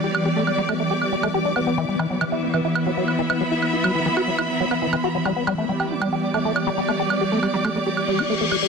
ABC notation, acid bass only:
X:1
M:4/4
L:1/16
Q:1/4=138
K:G
V:1 name="Acid bass"
G z G A, G, G, A, A, G z G, A, G D B, B, | E, G, E, F, E, E G, E, E z F, F, z E, E, F, | E z E F, E, E, F F, E z F, B, E, E, F F, | G, B, G, A, G, G B, G, G z A, A, z G, G, A, |
G z G A, G, G, A, A, G z G, G A, A, G, G, |]